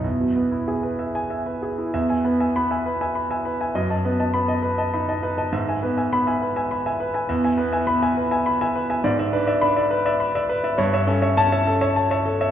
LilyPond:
<<
  \new Staff \with { instrumentName = "Grand piano" } { \time 3/4 \key e \major \tempo 4 = 101 << { r4. r16 gis''8 r8. | r4 b''8 r4. | r4 b''8 r4. | r4 b''8 r4. |
r4 b''8 r4. | \key a \major r4 b''8 r4. | r4 a''8 r4. | } \\ { r2. | e''16 <e'' gis''>16 b'16 <e'' gis''>16 r16 <e'' gis''>16 b'16 <e'' gis''>16 b''16 <e'' gis''>16 b'16 <e'' gis''>16 | dis''16 <dis'' a''>16 b'16 <dis'' a''>16 r16 <dis'' a''>16 b'16 <dis'' a''>16 b''16 <dis'' a''>16 b'16 <dis'' a''>16 | e''16 <e'' gis''>16 b'16 <e'' gis''>16 r16 <e'' gis''>16 b'16 <e'' gis''>16 b''16 <e'' gis''>16 b'16 <e'' gis''>16 |
e''16 <e'' gis''>16 b'16 <e'' gis''>16 r16 <e'' gis''>16 b'16 <e'' gis''>16 b''16 <e'' gis''>16 b'16 <e'' gis''>16 | d''16 <d'' e''>16 b'16 <d'' e''>16 r16 <d'' e''>16 b'16 <d'' e''>16 b''16 <d'' e''>16 b'16 <d'' e''>16 | cis''16 <cis'' e''>16 a'16 <cis'' e''>16 r16 <cis'' e''>16 a'16 <cis'' e''>16 a''16 <cis'' e''>16 a'16 <cis'' e''>16 | } >> }
  \new Staff \with { instrumentName = "Grand piano" } { \time 3/4 \key e \major e,16 b,16 b16 e'16 gis'16 b'16 e''8 e''16 b'16 gis'16 e'16 | e,8 b8 b8 r4. | fis,8 b8 b8 r8 dis'8 dis'8 | gis,8 b8 b8 r4. |
e,8 b8 b8 r4. | \key a \major gis,8 d'8 d'8 r4. | g,8 cis'8 cis'8 r4. | }
>>